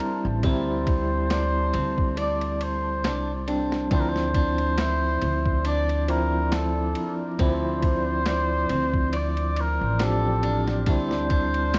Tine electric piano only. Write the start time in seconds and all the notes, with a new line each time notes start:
Already playing: G3 C4 E4
0.44 G3 C4 E4
3.48 G3 C4 D4
3.91 F3 C4 E4
6.08 F3 C4 E4
7.39 F3 C4 E4
10.01 F3 C4 G4
10.87 G3 C4 E4